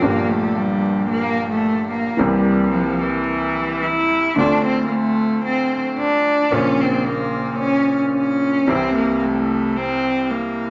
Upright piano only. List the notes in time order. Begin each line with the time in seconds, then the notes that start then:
0.00 G1 G2 A#2 F3 D4 G4
2.17 C2 C3 E3 A#3 C4
2.21 G4
4.36 D2 D3 A3 C4 F4
6.50 A#1 A#2 C#3 A#3 C5
6.54 F4
8.65 C2 C3 E3 G3
8.70 E4